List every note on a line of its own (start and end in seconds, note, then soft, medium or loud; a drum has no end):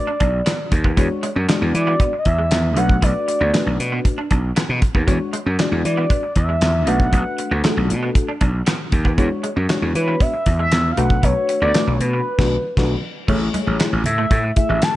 0.00 0.68 D5 medium
0.07 0.16 D4 medium
0.20 0.40 B1 medium
0.20 0.29 D4 medium
0.20 kick medium
0.20 closed hi-hat medium
0.46 0.55 B3 medium
0.46 snare loud
0.46 clap medium
0.46 closed hi-hat medium
0.72 0.91 D#2 medium
0.72 muted clean electric guitar stroke soft
0.72 kick loud
0.72 closed hi-hat medium
0.84 0.94 B3 medium
0.84 kick medium
0.97 1.07 E2 loud
0.97 1.29 G#3 medium
0.97 1.06 B3 medium
0.97 1.29 D4 medium
0.97 1.29 F#4 medium
0.97 1.30 C#5 medium
0.97 kick loud
0.97 closed hi-hat medium
1.23 1.32 G#3 medium
1.23 closed hi-hat medium
1.36 1.46 F#2 medium
1.36 muted clean electric guitar stroke soft
1.48 2.12 G#3 medium
1.48 1.57 G#3 medium
1.48 2.12 D4 medium
1.48 2.13 F#4 medium
1.48 2.13 D5 medium
1.48 snare loud
1.48 clap medium
1.48 closed hi-hat medium
1.62 1.71 E2 loud
1.62 muted clean electric guitar stroke soft
1.74 1.94 E3 loud
1.74 2.16 D5 medium
1.74 closed hi-hat medium
1.87 1.96 B3 medium
2.00 2.09 B3 medium
2.00 kick loud
2.00 closed hi-hat medium
2.13 muted clean electric guitar stroke soft
2.19 2.28 D#5 medium
2.25 2.45 E2 medium
2.25 2.77 E5 loud
2.25 kick medium
2.25 closed hi-hat medium
2.39 2.47 G#3 medium
2.51 2.77 E2 medium
2.51 snare loud
2.51 clap medium
2.51 closed hi-hat loud
2.77 2.96 B1 medium
2.77 3.38 A3 medium
2.77 2.86 A3 medium
2.77 3.38 D4 medium
2.77 3.39 F#4 medium
2.77 3.39 B4 medium
2.77 3.01 F#5 loud
2.77 closed hi-hat medium
2.90 kick medium
3.02 3.12 B1 loud
3.02 3.11 B3 medium
3.02 3.76 D5 medium
3.02 kick loud
3.02 closed hi-hat medium
3.28 muted clean electric guitar stroke soft
3.28 closed hi-hat medium
3.41 3.51 D2 loud
3.41 3.50 B3 medium
3.53 4.18 A3 medium
3.53 3.62 A3 medium
3.53 4.18 D4 medium
3.53 4.18 F#4 medium
3.53 4.18 B4 medium
3.53 snare loud
3.53 clap medium
3.53 closed hi-hat medium
3.66 3.76 B1 medium
3.66 muted clean electric guitar stroke soft
3.79 3.99 B2 medium
3.79 closed hi-hat medium
3.92 4.01 B3 medium
4.05 muted clean electric guitar stroke soft
4.05 kick loud
4.05 closed hi-hat medium
4.18 4.27 D4 medium
4.31 4.50 B1 medium
4.31 4.40 D4 medium
4.31 kick medium
4.31 closed hi-hat medium
4.56 4.65 B3 medium
4.56 snare loud
4.56 clap medium
4.56 closed hi-hat medium
4.69 4.79 B2 medium
4.82 muted clean electric guitar stroke soft
4.82 kick loud
4.82 closed hi-hat medium
4.95 5.04 D#2 medium
4.95 5.04 B3 medium
4.95 kick loud
5.07 5.17 E2 loud
5.07 5.39 G#3 medium
5.07 5.16 B3 medium
5.07 5.40 D4 medium
5.07 5.40 F#4 medium
5.07 5.40 C#5 loud
5.07 kick loud
5.07 closed hi-hat medium
5.33 5.42 G#3 medium
5.33 closed hi-hat medium
5.46 5.56 F#2 medium
5.46 muted clean electric guitar stroke soft
5.59 6.23 G#3 medium
5.59 5.68 G#3 medium
5.59 6.23 D4 medium
5.59 6.23 F#4 medium
5.59 6.23 D5 medium
5.59 snare loud
5.59 clap medium
5.59 closed hi-hat medium
5.72 5.82 E2 loud
5.72 muted clean electric guitar stroke soft
5.85 6.04 E3 medium
5.85 6.33 D5 medium
5.85 closed hi-hat medium
5.97 6.06 B3 medium
6.10 6.19 B3 medium
6.10 kick loud
6.10 closed hi-hat medium
6.23 muted clean electric guitar stroke soft
6.36 6.55 E2 medium
6.36 6.89 E5 loud
6.36 kick medium
6.36 closed hi-hat medium
6.49 6.58 G#3 medium
6.61 6.87 E2 loud
6.61 snare loud
6.61 clap medium
6.61 closed hi-hat medium
6.87 7.07 B1 medium
6.87 7.49 A3 medium
6.87 6.96 A3 medium
6.87 7.49 D4 medium
6.87 7.49 F#4 medium
6.87 7.49 B4 medium
6.87 7.90 F#5 loud
6.87 closed hi-hat medium
7.00 kick medium
7.13 7.22 B1 loud
7.13 7.22 B3 medium
7.13 kick medium
7.13 closed hi-hat medium
7.38 muted clean electric guitar stroke soft
7.38 closed hi-hat medium
7.51 7.61 D2 medium
7.51 7.60 B3 medium
7.64 8.28 A3 medium
7.64 7.73 A3 medium
7.64 8.28 D4 medium
7.64 8.28 F#4 medium
7.64 7.70 G#4 medium
7.64 snare loud
7.64 clap medium
7.64 closed hi-hat medium
7.71 8.31 A4 medium
7.77 7.91 B1 loud
7.77 muted clean electric guitar stroke soft
7.90 8.09 B2 loud
7.90 closed hi-hat medium
8.03 8.11 B3 medium
8.15 muted clean electric guitar stroke soft
8.15 kick loud
8.15 closed hi-hat medium
8.28 8.37 D4 medium
8.41 8.61 B1 loud
8.41 8.50 D4 medium
8.41 kick medium
8.41 closed hi-hat medium
8.66 8.76 B3 medium
8.66 snare loud
8.66 clap loud
8.66 closed hi-hat loud
8.92 9.12 D#2 medium
8.92 muted clean electric guitar stroke soft
8.92 kick loud
8.92 closed hi-hat medium
9.05 9.14 B3 medium
9.05 kick medium
9.18 9.28 E2 loud
9.18 9.50 G#3 medium
9.18 9.27 B3 medium
9.18 9.50 D4 medium
9.18 9.50 F#4 medium
9.18 9.50 C#5 loud
9.18 kick loud
9.18 closed hi-hat medium
9.43 9.52 G#3 medium
9.43 closed hi-hat medium
9.56 9.66 F#2 medium
9.56 muted clean electric guitar stroke soft
9.69 10.33 G#3 medium
9.69 9.78 G#3 medium
9.69 10.33 D4 medium
9.69 10.33 F#4 medium
9.69 10.33 C#5 loud
9.69 snare loud
9.69 clap medium
9.69 closed hi-hat medium
9.82 9.92 E2 loud
9.82 muted clean electric guitar stroke soft
9.95 10.14 E3 loud
9.95 10.23 B4 medium
9.95 closed hi-hat medium
10.08 10.17 B3 medium
10.20 10.29 B3 medium
10.20 10.59 E5 loud
10.20 kick loud
10.20 closed hi-hat medium
10.34 muted clean electric guitar stroke soft
10.46 10.66 E2 medium
10.46 kick medium
10.46 closed hi-hat medium
10.59 10.68 G#3 medium
10.59 10.93 E5 loud
10.72 10.91 E2 medium
10.72 snare loud
10.72 clap medium
10.72 closed hi-hat medium
10.91 11.00 F5 medium
10.97 11.17 B1 medium
10.97 11.59 A3 medium
10.97 11.06 A3 medium
10.97 11.59 D4 medium
10.97 11.59 F#4 medium
10.97 11.59 B4 medium
10.97 11.25 F#5 loud
10.97 closed hi-hat medium
11.10 kick medium
11.23 11.33 B1 loud
11.23 11.32 B3 medium
11.23 11.61 C#5 loud
11.23 kick loud
11.23 closed hi-hat medium
11.49 muted clean electric guitar stroke soft
11.49 closed hi-hat medium
11.62 11.71 D2 medium
11.62 11.71 B3 medium
11.62 11.95 D5 medium
11.74 12.26 A3 medium
11.74 11.83 A3 medium
11.74 12.26 D4 medium
11.74 12.26 F#4 medium
11.74 12.26 B4 medium
11.74 snare loud
11.74 clap medium
11.74 closed hi-hat medium
11.87 11.97 B1 medium
11.87 muted clean electric guitar stroke soft
11.93 12.02 C#5 medium
12.00 12.20 B2 medium
12.00 13.03 B4 loud
12.00 closed hi-hat medium
12.13 12.22 B3 medium
12.38 12.56 B1 medium
12.38 12.56 A3 medium
12.38 12.56 D4 medium
12.38 12.56 F#4 loud
12.38 12.56 B4 medium
12.38 kick loud
12.38 snare medium
12.38 crash medium
12.77 12.94 B1 loud
12.77 12.94 A3 loud
12.77 12.94 D4 medium
12.77 12.95 F#4 medium
12.77 12.95 B4 medium
12.77 kick loud
12.77 snare loud
12.77 crash medium
13.28 13.48 A1 loud
13.28 13.92 A3 medium
13.28 13.37 A3 medium
13.28 13.92 E4 medium
13.28 13.92 G#4 medium
13.28 13.92 C#5 loud
13.28 kick loud
13.28 crash medium
13.28 low conga medium
13.40 muted conga soft
13.54 13.63 G#3 medium
13.54 closed hi-hat medium
13.54 high conga medium
13.67 13.77 A1 loud
13.67 muted clean electric guitar stroke soft
13.80 13.88 G#3 medium
13.80 snare loud
13.80 clap medium
13.80 closed hi-hat medium
13.92 14.02 A1 loud
13.92 muted clean electric guitar stroke soft
14.04 14.25 A2 loud
14.04 14.53 E5 loud
14.04 closed hi-hat medium
14.04 low conga medium
14.18 14.27 A3 medium
14.31 14.50 A2 loud
14.31 14.40 A3 medium
14.31 kick loud
14.31 closed hi-hat medium
14.44 muted clean electric guitar stroke soft
14.56 14.96 A3 medium
14.56 14.96 E4 medium
14.56 14.96 G#4 medium
14.56 14.96 E5 medium
14.56 14.84 E5 medium
14.56 kick medium
14.56 closed hi-hat medium
14.69 14.79 A1 medium
14.69 14.78 G#3 medium
14.82 14.96 A5 loud
14.82 snare loud
14.82 clap medium
14.82 closed hi-hat medium